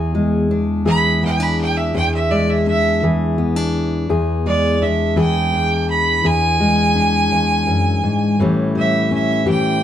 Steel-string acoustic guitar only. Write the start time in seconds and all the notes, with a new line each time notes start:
Already playing: E2 E3 G#3 G#4
0.15 G#3
0.51 D4
0.85 E3 G#4
1.23 B3
1.40 D4
1.94 E2 G#4
2.31 G#3
2.67 D4
3.03 E3 G#4
3.38 B3
3.56 D4
4.09 E2 G#4
4.46 G#3
4.82 D4
5.16 E3 G#4
5.53 D4
6.24 E2 G#4
6.60 G#3
6.95 D4
7.31 E2
7.67 F#2
8.04 G#2
8.40 A2 E3 G3 C#4 G4
8.75 G3
9.11 C#4
9.45 E3 G4